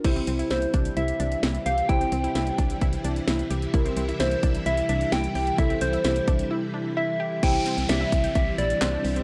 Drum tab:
CC |x---------------|----------------|----------------|----------------|
HH |xxxxxxxxxxxxxxxx|xxxxxxxxxxxxxxxx|xxxxxxxxxxxxxxox|xxxxxxxx--------|
CP |----------------|----------------|----------------|----------------|
SD |----o-------o---|----o-------o---|----o-------o---|----o-----------|
BD |o-----o---------|o-----o-o-------|o-----o---------|o-----o---------|

CC |x---------------|
HH |x-xxx-xxx-xxx-ox|
CP |------------x---|
SD |----o-------o---|
BD |o-----o-o-------|